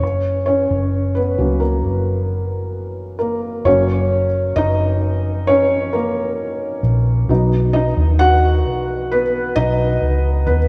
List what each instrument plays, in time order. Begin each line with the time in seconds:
Already playing: felt piano C#4 C#5
0.03 fingered electric bass F#1
0.46 felt piano C#4 C#5
0.70 fingered electric bass F#1
1.15 felt piano B3 B4
1.38 fingered electric bass C#2, felt piano F#3 A#3 C#4
1.60 felt piano A#3 A#4
1.84 fingered electric bass F#1
3.19 felt piano A#3 A#4
3.65 fingered electric bass F#1, felt piano F#3 A#3 C#4 C#5
4.56 fingered electric bass F#1, felt piano D#4 D#5
5.47 felt piano C#4 C#5
5.93 felt piano A#3 A#4
6.83 fingered electric bass A#1
7.29 fingered electric bass B1, felt piano F#3 B3 D#4
7.73 felt piano D#4 D#5
7.97 fingered electric bass D#2
8.19 felt piano F#4 F#5
8.65 fingered electric bass B1
9.12 felt piano B3 B4
9.56 fingered electric bass B1, felt piano D#4 D#5
10.02 fingered electric bass C#2
10.47 fingered electric bass D#2, felt piano B3 B4